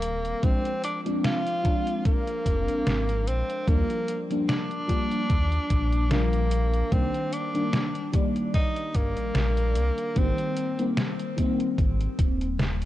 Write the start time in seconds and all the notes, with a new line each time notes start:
Already playing: D#1 D#3 G3 A#3 C4
0.02 closed hi-hat
0.25 closed hi-hat
0.42 A#1 F3 G#3 C4 D4, kick, closed hi-hat
0.65 closed hi-hat
0.84 D4, closed hi-hat
1.05 F3 G#3 C4 D4, closed hi-hat
1.24 F4, snare, closed hi-hat
1.47 closed hi-hat
1.63 F3 G#3 C4 D4, kick, closed hi-hat
1.87 closed hi-hat
2.05 A#3, kick, closed hi-hat
2.28 closed hi-hat
2.46 F1, kick, closed hi-hat
2.68 G#1, closed hi-hat
2.87 G#1, snare, closed hi-hat
3.09 closed hi-hat
3.27 A#1 C4, closed hi-hat
3.50 closed hi-hat
3.67 D#2 F3 G3 A#3 D4, kick, closed hi-hat
3.90 closed hi-hat
4.08 closed hi-hat
4.30 F3 G3 A#3 D4, closed hi-hat
4.49 D4, snare, closed hi-hat
4.71 closed hi-hat
4.87 F3 G3 A#3 D4, kick, closed hi-hat
5.11 closed hi-hat
5.30 D#2, kick, closed hi-hat
5.52 closed hi-hat
5.70 A#1, kick, closed hi-hat
5.93 closed hi-hat
6.10 F3 G3 A#3 D4, snare, closed hi-hat
6.33 closed hi-hat
6.51 closed hi-hat
6.74 closed hi-hat
6.91 C2 D#3 G3 A#3 C4 D4, kick, closed hi-hat
7.14 closed hi-hat
7.33 D4, closed hi-hat
7.54 D#3 G3 A#3 D4, closed hi-hat
7.73 snare, closed hi-hat
7.95 closed hi-hat
8.12 D#3 G3 A#3 D5, kick, closed hi-hat
8.36 closed hi-hat
8.54 D#4, kick, closed hi-hat
8.76 closed hi-hat
8.94 G1 A#3, kick, closed hi-hat
9.17 A#1, closed hi-hat
9.35 A#1, snare, closed hi-hat
9.57 closed hi-hat
9.75 C2, closed hi-hat
9.98 closed hi-hat
10.15 G#1 D#3 G3 A#3 C4, kick, closed hi-hat
10.38 closed hi-hat
10.56 closed hi-hat
10.78 D#3 G3 A#3 C4, closed hi-hat
10.97 snare, closed hi-hat
11.19 closed hi-hat
11.36 D#3 G3 A#3 C4, kick, closed hi-hat
11.60 closed hi-hat
11.78 G#1, kick, closed hi-hat
12.01 closed hi-hat
12.19 D#1, kick, closed hi-hat
12.41 closed hi-hat
12.59 snare, closed hi-hat
12.82 closed hi-hat